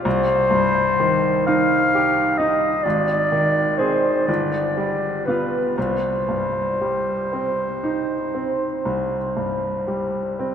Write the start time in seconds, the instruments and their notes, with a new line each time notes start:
0.04 grand piano C2, clarinet C5
0.51 grand piano G2
1.00 grand piano D#3
1.47 grand piano D#4, clarinet F5
1.95 grand piano G4
2.38 grand piano D#4, clarinet D#5
2.83 grand piano G#1, clarinet D5
3.32 grand piano D#3
3.78 grand piano C4 G#4, clarinet C5
4.27 grand piano G1, clarinet D5
4.77 grand piano G3
5.26 grand piano B3 F4, clarinet B4
5.78 grand piano C2, clarinet C5
6.29 grand piano G2
6.81 grand piano G3
7.33 grand piano C4
7.83 grand piano D#4
8.35 grand piano C4
8.85 grand piano C2
9.37 grand piano G2
9.87 grand piano G3
10.39 grand piano C4